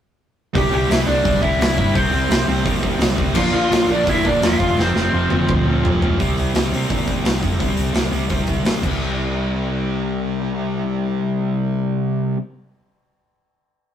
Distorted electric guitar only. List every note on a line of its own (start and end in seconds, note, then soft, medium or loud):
0.54 0.70 C3 loud
0.54 0.71 G3 loud
0.54 0.71 C4 loud
0.54 0.72 E4 loud
0.70 0.88 C3 medium
0.70 0.89 G3 medium
0.70 0.89 C4 medium
0.70 0.90 E4 medium
0.88 1.06 C3 medium
0.88 1.07 G3 medium
0.88 1.07 C4 loud
0.88 1.08 E4 loud
1.07 1.22 C3 medium
1.07 1.22 G3 medium
1.07 1.23 C4 medium
1.07 1.24 E4 loud
1.23 1.40 C3 loud
1.23 1.40 G3 medium
1.23 1.40 C4 loud
1.23 1.41 E4 medium
1.41 1.57 C3 medium
1.41 1.58 G3 medium
1.41 1.58 C4 medium
1.41 1.59 E4 medium
1.58 1.75 C3 medium
1.58 1.76 G3 loud
1.58 1.76 C4 loud
1.58 1.77 E4 loud
1.76 1.93 C3 medium
1.76 1.94 G3 medium
1.76 1.94 C4 medium
1.76 1.95 E4 medium
1.94 2.10 C3 loud
1.94 2.11 G3 loud
1.94 2.11 C4 loud
1.94 2.12 E4 loud
2.11 2.27 C3 medium
2.11 2.28 G3 medium
2.11 2.28 C4 medium
2.11 2.29 E4 medium
2.28 2.46 C3 medium
2.28 2.46 G3 medium
2.28 2.47 C4 medium
2.28 2.48 E4 loud
2.47 2.62 C3 medium
2.47 2.63 G3 medium
2.47 2.64 C4 medium
2.47 2.64 E4 medium
2.64 2.80 C3 medium
2.64 2.81 G3 medium
2.64 2.81 C4 medium
2.64 2.82 E4 loud
2.81 2.98 C3 medium
2.81 2.99 G3 medium
2.81 2.99 C4 medium
2.81 3.00 E4 medium
2.99 3.15 C3 loud
2.99 3.15 G3 medium
2.99 3.16 C4 loud
2.99 3.16 E4 loud
3.16 3.33 C3 medium
3.16 3.34 G3 medium
3.16 3.34 C4 medium
3.16 3.35 E4 medium
3.34 3.51 A#2 loud
3.34 3.52 F3 loud
3.34 3.52 A#3 loud
3.34 3.53 D4 loud
3.52 3.70 A#2 medium
3.52 3.71 F3 medium
3.52 3.71 A#3 medium
3.52 3.71 D4 loud
3.71 3.86 A#2 loud
3.71 3.88 F3 loud
3.71 3.88 A#3 medium
3.71 3.88 D4 medium
3.87 4.05 A#2 medium
3.87 4.05 F3 medium
3.87 4.06 A#3 medium
3.87 4.07 D4 medium
4.06 4.23 A#2 medium
4.06 4.24 F3 loud
4.06 4.25 A#3 loud
4.06 4.25 D4 medium
4.24 4.40 A#2 medium
4.24 4.41 F3 medium
4.24 4.41 A#3 medium
4.24 4.42 D4 medium
4.42 4.58 A#2 medium
4.42 4.59 F3 loud
4.42 4.59 A#3 loud
4.42 4.59 D4 loud
4.59 4.75 F2 medium
4.59 4.76 C3 medium
4.59 4.76 F3 loud
4.59 4.77 A3 loud
4.59 4.78 C4 loud
4.76 4.93 F2 loud
4.76 4.94 C3 loud
4.76 4.95 F3 loud
4.76 4.95 A3 loud
4.76 4.95 C4 loud
4.94 5.11 F2 medium
4.94 5.12 C3 medium
4.94 5.12 F3 medium
4.94 5.13 A3 medium
4.94 5.13 C4 loud
5.12 5.28 F2 medium
5.12 5.29 C3 loud
5.12 5.30 F3 loud
5.12 5.30 A3 medium
5.12 5.31 C4 loud
5.30 5.46 F2 medium
5.30 5.47 C3 medium
5.30 5.47 F3 medium
5.30 5.48 A3 loud
5.30 5.49 C4 loud
5.47 5.64 F2 medium
5.47 5.64 C3 medium
5.47 5.65 F3 medium
5.47 5.65 A3 loud
5.47 5.65 C4 loud
5.65 5.82 F2 medium
5.65 5.82 C3 medium
5.65 5.84 F3 medium
5.65 5.84 A3 medium
5.65 5.84 C4 medium
5.83 5.99 F2 medium
5.83 6.00 C3 loud
5.83 6.01 F3 loud
5.83 6.01 A3 medium
5.83 6.01 C4 loud
6.00 6.17 F2 medium
6.00 6.17 C3 medium
6.00 6.18 F3 medium
6.00 6.18 A3 medium
6.00 6.18 C4 loud
6.18 6.54 C3 medium
6.18 6.55 G3 loud
6.18 6.55 C4 loud
6.18 6.55 E4 loud
6.54 6.71 C3 medium
6.54 6.72 G3 medium
6.54 6.73 C4 medium
6.54 6.73 E4 medium
6.72 6.88 C3 medium
6.72 6.89 G3 medium
6.72 6.90 C4 medium
6.72 6.90 E4 medium
6.89 7.23 C3 medium
6.89 7.24 G3 medium
6.89 7.24 C4 medium
6.89 7.24 E4 medium
7.24 7.41 C3 medium
7.24 7.42 G3 medium
7.24 7.42 C4 medium
7.24 7.43 E4 medium
7.41 7.57 C3 medium
7.41 7.58 G3 medium
7.41 7.58 C4 medium
7.41 7.59 E4 medium
7.59 7.92 C3 loud
7.59 7.92 G3 loud
7.59 7.93 C4 loud
7.59 7.94 E4 loud
7.93 8.09 C3 medium
7.93 8.10 G3 medium
7.93 8.11 C4 medium
7.93 8.11 E4 medium
8.10 8.26 C3 medium
8.10 8.27 G3 medium
8.10 8.28 C4 medium
8.10 8.29 E4 medium
8.27 8.63 C3 medium
8.27 8.63 G3 medium
8.27 8.63 C4 loud
8.27 8.64 E4 loud
8.64 8.81 C3 medium
8.64 8.82 G3 medium
8.64 8.82 C4 medium
8.64 8.83 E4 medium
8.82 12.36 C3 medium
8.82 12.38 G3 medium
8.82 12.38 C4 medium
8.82 12.40 E4 medium